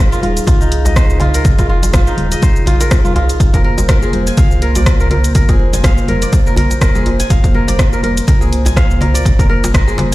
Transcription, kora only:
0, 0, Header, 1, 2, 480
1, 0, Start_track
1, 0, Tempo, 487805
1, 1426, Time_signature, 4, 2, 24, 8
1, 9986, End_track
2, 0, Start_track
2, 0, Title_t, "Kora"
2, 0, Program_c, 0, 46
2, 0, Note_on_c, 0, 63, 78
2, 0, Note_on_c, 0, 65, 78
2, 0, Note_on_c, 0, 70, 77
2, 0, Note_on_c, 0, 72, 83
2, 0, Note_on_c, 0, 75, 81
2, 116, Note_off_c, 0, 65, 0
2, 120, Note_on_c, 0, 65, 82
2, 221, Note_off_c, 0, 65, 0
2, 225, Note_on_c, 0, 65, 74
2, 455, Note_off_c, 0, 75, 0
2, 460, Note_off_c, 0, 65, 0
2, 464, Note_on_c, 0, 65, 90
2, 593, Note_off_c, 0, 63, 0
2, 597, Note_on_c, 0, 63, 85
2, 676, Note_off_c, 0, 72, 0
2, 837, Note_on_c, 0, 75, 81
2, 945, Note_on_c, 0, 72, 86
2, 1135, Note_off_c, 0, 70, 0
2, 1182, Note_off_c, 0, 65, 0
2, 1186, Note_on_c, 0, 65, 78
2, 1322, Note_on_c, 0, 70, 76
2, 1556, Note_off_c, 0, 65, 0
2, 1560, Note_on_c, 0, 65, 78
2, 1662, Note_off_c, 0, 65, 0
2, 1666, Note_on_c, 0, 65, 78
2, 1890, Note_off_c, 0, 75, 0
2, 1903, Note_off_c, 0, 65, 0
2, 1907, Note_on_c, 0, 65, 85
2, 2036, Note_off_c, 0, 63, 0
2, 2040, Note_on_c, 0, 63, 77
2, 2113, Note_off_c, 0, 72, 0
2, 2281, Note_on_c, 0, 75, 80
2, 2385, Note_on_c, 0, 72, 88
2, 2575, Note_off_c, 0, 70, 0
2, 2622, Note_off_c, 0, 65, 0
2, 2626, Note_on_c, 0, 65, 80
2, 2759, Note_on_c, 0, 70, 78
2, 2994, Note_off_c, 0, 65, 0
2, 2998, Note_on_c, 0, 65, 82
2, 3100, Note_off_c, 0, 65, 0
2, 3104, Note_on_c, 0, 65, 80
2, 3334, Note_off_c, 0, 75, 0
2, 3475, Note_off_c, 0, 70, 0
2, 3479, Note_on_c, 0, 70, 77
2, 3554, Note_off_c, 0, 72, 0
2, 3582, Note_off_c, 0, 70, 0
2, 3586, Note_on_c, 0, 70, 77
2, 3637, Note_off_c, 0, 63, 0
2, 3823, Note_off_c, 0, 70, 0
2, 3827, Note_on_c, 0, 70, 79
2, 3963, Note_on_c, 0, 68, 76
2, 4203, Note_on_c, 0, 80, 79
2, 4306, Note_on_c, 0, 77, 85
2, 4543, Note_off_c, 0, 70, 0
2, 4547, Note_on_c, 0, 70, 78
2, 4593, Note_off_c, 0, 65, 0
2, 4683, Note_on_c, 0, 74, 79
2, 4918, Note_off_c, 0, 70, 0
2, 4922, Note_on_c, 0, 70, 81
2, 5022, Note_off_c, 0, 70, 0
2, 5026, Note_on_c, 0, 70, 75
2, 5089, Note_off_c, 0, 80, 0
2, 5260, Note_off_c, 0, 70, 0
2, 5264, Note_on_c, 0, 70, 83
2, 5288, Note_off_c, 0, 77, 0
2, 5305, Note_off_c, 0, 68, 0
2, 5402, Note_on_c, 0, 68, 77
2, 5643, Note_on_c, 0, 80, 80
2, 5747, Note_on_c, 0, 77, 81
2, 5774, Note_off_c, 0, 74, 0
2, 5984, Note_off_c, 0, 70, 0
2, 5988, Note_on_c, 0, 70, 73
2, 6121, Note_on_c, 0, 74, 78
2, 6360, Note_off_c, 0, 70, 0
2, 6364, Note_on_c, 0, 70, 82
2, 6463, Note_off_c, 0, 70, 0
2, 6467, Note_on_c, 0, 70, 81
2, 6529, Note_off_c, 0, 80, 0
2, 6703, Note_off_c, 0, 70, 0
2, 6706, Note_on_c, 0, 70, 86
2, 6729, Note_off_c, 0, 77, 0
2, 6744, Note_off_c, 0, 68, 0
2, 6842, Note_on_c, 0, 68, 82
2, 7082, Note_on_c, 0, 80, 76
2, 7187, Note_on_c, 0, 77, 82
2, 7212, Note_off_c, 0, 74, 0
2, 7423, Note_off_c, 0, 70, 0
2, 7427, Note_on_c, 0, 70, 81
2, 7559, Note_on_c, 0, 74, 78
2, 7799, Note_off_c, 0, 70, 0
2, 7803, Note_on_c, 0, 70, 77
2, 7901, Note_off_c, 0, 70, 0
2, 7905, Note_on_c, 0, 70, 72
2, 7968, Note_off_c, 0, 80, 0
2, 8139, Note_off_c, 0, 70, 0
2, 8142, Note_on_c, 0, 70, 88
2, 8170, Note_off_c, 0, 77, 0
2, 8185, Note_off_c, 0, 68, 0
2, 8276, Note_on_c, 0, 68, 83
2, 8520, Note_on_c, 0, 80, 78
2, 8622, Note_on_c, 0, 77, 82
2, 8649, Note_off_c, 0, 74, 0
2, 8859, Note_off_c, 0, 70, 0
2, 8863, Note_on_c, 0, 70, 80
2, 8997, Note_on_c, 0, 74, 78
2, 9236, Note_off_c, 0, 70, 0
2, 9240, Note_on_c, 0, 70, 77
2, 9339, Note_off_c, 0, 70, 0
2, 9343, Note_on_c, 0, 70, 79
2, 9406, Note_off_c, 0, 80, 0
2, 9581, Note_off_c, 0, 70, 0
2, 9585, Note_on_c, 0, 70, 85
2, 9605, Note_off_c, 0, 77, 0
2, 9618, Note_off_c, 0, 68, 0
2, 9718, Note_on_c, 0, 68, 81
2, 9986, Note_off_c, 0, 68, 0
2, 9986, Note_off_c, 0, 70, 0
2, 9986, Note_off_c, 0, 74, 0
2, 9986, End_track
0, 0, End_of_file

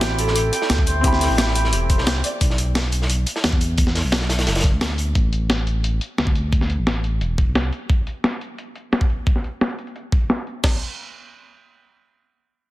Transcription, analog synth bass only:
0, 0, Header, 1, 2, 480
1, 0, Start_track
1, 0, Tempo, 342857
1, 1456, Time_signature, 4, 2, 24, 8
1, 17790, End_track
2, 0, Start_track
2, 0, Title_t, "Analog synth bass"
2, 0, Program_c, 0, 38
2, 0, Note_on_c, 0, 33, 101
2, 718, Note_off_c, 0, 33, 0
2, 979, Note_on_c, 0, 38, 95
2, 1798, Note_off_c, 0, 38, 0
2, 1818, Note_on_c, 0, 33, 87
2, 2419, Note_on_c, 0, 28, 100
2, 2440, Note_off_c, 0, 33, 0
2, 2779, Note_on_c, 0, 36, 90
2, 2800, Note_off_c, 0, 28, 0
2, 3118, Note_off_c, 0, 36, 0
2, 3377, Note_on_c, 0, 35, 96
2, 4557, Note_off_c, 0, 35, 0
2, 4814, Note_on_c, 0, 40, 96
2, 5636, Note_off_c, 0, 40, 0
2, 5657, Note_on_c, 0, 35, 84
2, 6258, Note_on_c, 0, 30, 100
2, 6279, Note_off_c, 0, 35, 0
2, 6615, Note_on_c, 0, 38, 88
2, 6636, Note_off_c, 0, 30, 0
2, 7196, Note_off_c, 0, 38, 0
2, 7215, Note_on_c, 0, 33, 98
2, 8396, Note_off_c, 0, 33, 0
2, 8656, Note_on_c, 0, 38, 93
2, 9477, Note_off_c, 0, 38, 0
2, 9496, Note_on_c, 0, 33, 84
2, 10095, Note_on_c, 0, 28, 98
2, 10116, Note_off_c, 0, 33, 0
2, 10455, Note_on_c, 0, 36, 88
2, 10476, Note_off_c, 0, 28, 0
2, 10796, Note_off_c, 0, 36, 0
2, 17790, End_track
0, 0, End_of_file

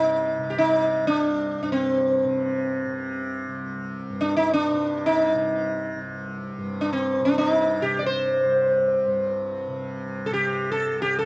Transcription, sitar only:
0, 0, Header, 1, 2, 480
1, 0, Start_track
1, 0, Tempo, 500000
1, 10802, End_track
2, 0, Start_track
2, 0, Title_t, "Sitar"
2, 0, Program_c, 0, 104
2, 0, Note_on_c, 0, 63, 68
2, 480, Note_on_c, 0, 67, 50
2, 504, Note_off_c, 0, 63, 0
2, 547, Note_off_c, 0, 67, 0
2, 561, Note_on_c, 0, 63, 65
2, 1025, Note_off_c, 0, 63, 0
2, 1029, Note_on_c, 0, 62, 67
2, 1550, Note_off_c, 0, 62, 0
2, 1562, Note_on_c, 0, 62, 46
2, 1633, Note_off_c, 0, 62, 0
2, 1652, Note_on_c, 0, 60, 57
2, 2820, Note_off_c, 0, 60, 0
2, 4039, Note_on_c, 0, 62, 66
2, 4187, Note_off_c, 0, 62, 0
2, 4191, Note_on_c, 0, 63, 69
2, 4350, Note_off_c, 0, 63, 0
2, 4354, Note_on_c, 0, 62, 74
2, 4854, Note_off_c, 0, 62, 0
2, 4858, Note_on_c, 0, 63, 63
2, 5749, Note_off_c, 0, 63, 0
2, 6538, Note_on_c, 0, 62, 58
2, 6646, Note_off_c, 0, 62, 0
2, 6649, Note_on_c, 0, 60, 60
2, 6957, Note_off_c, 0, 60, 0
2, 6961, Note_on_c, 0, 62, 64
2, 7081, Note_off_c, 0, 62, 0
2, 7085, Note_on_c, 0, 62, 65
2, 7200, Note_off_c, 0, 62, 0
2, 7200, Note_on_c, 0, 63, 65
2, 7509, Note_on_c, 0, 67, 63
2, 7518, Note_off_c, 0, 63, 0
2, 7670, Note_on_c, 0, 74, 51
2, 7684, Note_off_c, 0, 67, 0
2, 7738, Note_off_c, 0, 74, 0
2, 7742, Note_on_c, 0, 72, 71
2, 8917, Note_off_c, 0, 72, 0
2, 9852, Note_on_c, 0, 69, 56
2, 9917, Note_off_c, 0, 69, 0
2, 9921, Note_on_c, 0, 67, 72
2, 10284, Note_off_c, 0, 67, 0
2, 10288, Note_on_c, 0, 69, 75
2, 10574, Note_off_c, 0, 69, 0
2, 10577, Note_on_c, 0, 67, 77
2, 10735, Note_off_c, 0, 67, 0
2, 10739, Note_on_c, 0, 69, 75
2, 10802, Note_off_c, 0, 69, 0
2, 10802, End_track
0, 0, End_of_file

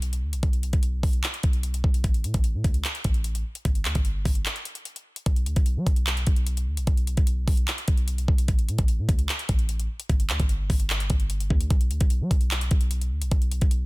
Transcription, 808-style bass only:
0, 0, Header, 1, 2, 480
1, 0, Start_track
1, 0, Tempo, 402685
1, 513, Time_signature, 4, 2, 24, 8
1, 16520, End_track
2, 0, Start_track
2, 0, Title_t, "808-style bass"
2, 0, Program_c, 0, 38
2, 0, Note_on_c, 0, 35, 109
2, 273, Note_on_c, 0, 38, 97
2, 291, Note_off_c, 0, 35, 0
2, 392, Note_on_c, 0, 35, 100
2, 410, Note_off_c, 0, 38, 0
2, 506, Note_off_c, 0, 35, 0
2, 513, Note_on_c, 0, 35, 109
2, 858, Note_off_c, 0, 35, 0
2, 873, Note_on_c, 0, 35, 99
2, 1218, Note_off_c, 0, 35, 0
2, 1232, Note_on_c, 0, 35, 105
2, 1462, Note_off_c, 0, 35, 0
2, 1713, Note_on_c, 0, 35, 108
2, 2173, Note_off_c, 0, 35, 0
2, 2193, Note_on_c, 0, 35, 104
2, 2423, Note_off_c, 0, 35, 0
2, 2433, Note_on_c, 0, 33, 105
2, 2673, Note_on_c, 0, 45, 100
2, 2691, Note_off_c, 0, 33, 0
2, 2787, Note_off_c, 0, 45, 0
2, 2793, Note_on_c, 0, 33, 108
2, 3033, Note_on_c, 0, 45, 105
2, 3050, Note_off_c, 0, 33, 0
2, 3147, Note_off_c, 0, 45, 0
2, 3152, Note_on_c, 0, 37, 103
2, 3383, Note_off_c, 0, 37, 0
2, 3633, Note_on_c, 0, 33, 110
2, 4094, Note_off_c, 0, 33, 0
2, 4352, Note_on_c, 0, 31, 104
2, 4592, Note_on_c, 0, 38, 100
2, 4610, Note_off_c, 0, 31, 0
2, 4706, Note_off_c, 0, 38, 0
2, 4713, Note_on_c, 0, 31, 99
2, 5058, Note_off_c, 0, 31, 0
2, 5071, Note_on_c, 0, 31, 102
2, 5302, Note_off_c, 0, 31, 0
2, 6273, Note_on_c, 0, 35, 104
2, 6512, Note_on_c, 0, 38, 104
2, 6530, Note_off_c, 0, 35, 0
2, 6626, Note_off_c, 0, 38, 0
2, 6633, Note_on_c, 0, 35, 105
2, 6873, Note_on_c, 0, 54, 99
2, 6891, Note_off_c, 0, 35, 0
2, 6987, Note_off_c, 0, 54, 0
2, 6992, Note_on_c, 0, 35, 101
2, 7453, Note_off_c, 0, 35, 0
2, 7474, Note_on_c, 0, 35, 114
2, 7953, Note_on_c, 0, 38, 101
2, 7970, Note_off_c, 0, 35, 0
2, 8073, Note_on_c, 0, 35, 100
2, 8091, Note_off_c, 0, 38, 0
2, 8187, Note_off_c, 0, 35, 0
2, 8192, Note_on_c, 0, 35, 109
2, 8538, Note_off_c, 0, 35, 0
2, 8553, Note_on_c, 0, 35, 100
2, 8898, Note_off_c, 0, 35, 0
2, 8912, Note_on_c, 0, 35, 101
2, 9142, Note_off_c, 0, 35, 0
2, 9393, Note_on_c, 0, 35, 111
2, 9854, Note_off_c, 0, 35, 0
2, 9873, Note_on_c, 0, 35, 102
2, 10103, Note_off_c, 0, 35, 0
2, 10112, Note_on_c, 0, 33, 102
2, 10352, Note_on_c, 0, 45, 103
2, 10370, Note_off_c, 0, 33, 0
2, 10466, Note_off_c, 0, 45, 0
2, 10473, Note_on_c, 0, 33, 105
2, 10712, Note_on_c, 0, 45, 103
2, 10730, Note_off_c, 0, 33, 0
2, 10826, Note_off_c, 0, 45, 0
2, 10832, Note_on_c, 0, 37, 109
2, 11062, Note_off_c, 0, 37, 0
2, 11313, Note_on_c, 0, 33, 110
2, 11773, Note_off_c, 0, 33, 0
2, 12034, Note_on_c, 0, 31, 106
2, 12272, Note_on_c, 0, 38, 102
2, 12290, Note_off_c, 0, 31, 0
2, 12386, Note_off_c, 0, 38, 0
2, 12394, Note_on_c, 0, 31, 104
2, 12739, Note_off_c, 0, 31, 0
2, 12751, Note_on_c, 0, 31, 103
2, 13213, Note_off_c, 0, 31, 0
2, 13232, Note_on_c, 0, 31, 109
2, 13693, Note_off_c, 0, 31, 0
2, 13712, Note_on_c, 0, 38, 107
2, 13943, Note_off_c, 0, 38, 0
2, 13953, Note_on_c, 0, 35, 103
2, 14195, Note_on_c, 0, 38, 102
2, 14212, Note_off_c, 0, 35, 0
2, 14308, Note_off_c, 0, 38, 0
2, 14313, Note_on_c, 0, 35, 110
2, 14554, Note_on_c, 0, 54, 101
2, 14572, Note_off_c, 0, 35, 0
2, 14667, Note_off_c, 0, 54, 0
2, 14672, Note_on_c, 0, 35, 104
2, 15133, Note_off_c, 0, 35, 0
2, 15153, Note_on_c, 0, 35, 109
2, 15632, Note_on_c, 0, 38, 97
2, 15650, Note_off_c, 0, 35, 0
2, 15752, Note_on_c, 0, 35, 102
2, 15769, Note_off_c, 0, 38, 0
2, 15866, Note_off_c, 0, 35, 0
2, 15872, Note_on_c, 0, 35, 111
2, 16218, Note_off_c, 0, 35, 0
2, 16232, Note_on_c, 0, 35, 103
2, 16520, Note_off_c, 0, 35, 0
2, 16520, End_track
0, 0, End_of_file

